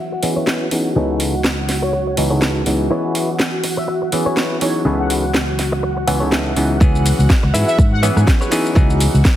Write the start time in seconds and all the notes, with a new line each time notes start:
Already playing: E3 B3 C#4 F#4 G#4 D#5 F#5
0.12 F#5, muted clean electric guitar stroke
0.23 E3 B3 C#4 G#4 D#5, open hi-hat
0.36 E4 B4 C#5
0.47 snare
0.71 E3 B3 C#4 D#4 G#4, open hi-hat
0.95 C#2 C#3 E3 B3 C#4 D#4 G#4 A4 B4 C#5 G#5
1.20 open hi-hat
1.44 snare
1.69 muted clean electric guitar stroke, snare, open hi-hat
1.82 C#5, muted clean electric guitar stroke
1.93 muted clean electric guitar stroke
2.07 muted clean electric guitar stroke
2.17 C#2 E3 B3 C#4 D#4 G#5, open hi-hat
2.30 C#3 D#4 G#4 A4 B4 C#5
2.42 snare
2.66 C#2 E3 B3 C#4 D#4 G#4, open hi-hat
2.90 E3 B3 C#4 E4 G#4 B4 C#5 D#5
3.15 open hi-hat
3.40 snare
3.64 muted clean electric guitar stroke, open hi-hat
3.77 E5, muted clean electric guitar stroke
3.88 muted clean electric guitar stroke
4.02 muted clean electric guitar stroke
4.12 E3 B3 C#4 G#4, open hi-hat
4.26 E4 B4 C#5
4.37 snare
4.61 E3 B3 C#4 D#4 G#4 C#5, open hi-hat
4.85 C#2 C#3 E3 B3 C#4 D#4 G#4 A4 B4 C#5 G#5
4.99 F#5
5.10 open hi-hat
5.34 snare
5.59 muted clean electric guitar stroke, snare, open hi-hat
5.72 muted clean electric guitar stroke
5.83 muted clean electric guitar stroke
5.97 muted clean electric guitar stroke
6.07 C#2 E3 B3 C#4 F#5 G#5, open hi-hat
6.20 C#3 D#4 G#4 A4 B4 C#5
6.32 E5, snare
6.56 C#2 E3 B3 C#4 D#4 G#4, open hi-hat
6.80 C#2 E3 B3 C#4 F#4 G#4 F#5, kick, shaker
6.95 shaker
7.06 open hi-hat, shaker
7.19 C#2, shaker
7.30 kick, snare, shaker
7.43 C#2, muted clean electric guitar stroke
7.54 G#2 E4 G#4 B4 E5, open hi-hat, shaker
7.67 E5, shaker
7.79 G#2, kick, shaker
7.92 F#5
8.03 E3 B3 C#4 E4 G#4 B4 E5, open hi-hat, shaker
8.16 G#2, cross-stick, shaker
8.27 kick, snare, shaker
8.41 E4 G#4 B4 C#5, shaker
8.51 E3 B3 C#4 D#4 G#4, open hi-hat, shaker
8.66 shaker
8.75 C#2 E3 B3 C#4 D#4 G#4, kick, shaker
8.90 shaker
9.00 open hi-hat, shaker
9.14 C#2, shaker
9.25 kick, snare, shaker